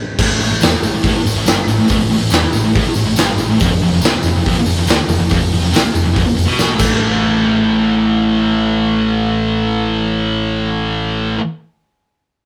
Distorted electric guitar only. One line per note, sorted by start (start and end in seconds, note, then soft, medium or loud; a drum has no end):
0.20 0.29 A2 loud
0.31 0.40 A2 medium
0.41 0.50 A2 medium
0.51 0.61 A2 medium
0.62 0.72 E3 medium
0.72 muted distorted electric guitar stroke medium
0.83 0.93 A2 medium
0.94 1.02 A2 medium
1.03 1.14 A2 loud
1.15 muted distorted electric guitar stroke medium
1.26 1.35 A2 medium
1.36 1.47 A2 medium
1.46 1.57 G2 loud
1.68 1.78 A2 medium
1.79 1.88 A2 medium
1.89 1.97 A2 loud
1.99 2.09 A2 medium
2.10 2.20 A2 medium
2.21 2.31 A2 medium
2.31 2.42 E3 loud
2.43 muted distorted electric guitar stroke medium
2.54 2.63 A2 medium
2.64 2.74 A2 medium
2.75 2.85 A2 loud
2.86 muted distorted electric guitar stroke medium
2.96 3.04 A2 medium
3.06 3.17 A2 medium
3.17 3.27 G2 loud
3.39 3.49 A2 medium
3.50 3.60 A2 medium
3.61 3.70 F2 loud
3.72 3.80 F2 medium
3.82 3.92 F2 medium
3.93 4.03 F2 medium
4.04 4.13 C3 loud
4.16 muted distorted electric guitar stroke medium
4.26 4.35 F2 medium
4.36 4.45 F2 medium
4.46 4.56 F2 loud
4.58 muted distorted electric guitar stroke medium
4.67 4.77 F2 medium
4.78 4.88 F2 medium
4.88 4.98 D3 loud
5.08 5.18 F2 medium
5.19 5.29 F2 medium
5.30 5.40 F2 loud
5.41 5.52 F2 medium
5.53 5.60 F2 medium
5.61 5.72 F2 medium
5.72 5.82 C3 loud
5.83 muted distorted electric guitar stroke medium
5.93 6.02 F2 medium
6.03 6.13 F2 medium
6.14 6.23 F2 loud
6.24 muted distorted electric guitar stroke medium
6.35 6.47 F2 medium
6.46 6.74 B2 loud
6.75 11.36 A2 loud
6.75 11.39 E3 loud
6.79 11.41 A3 loud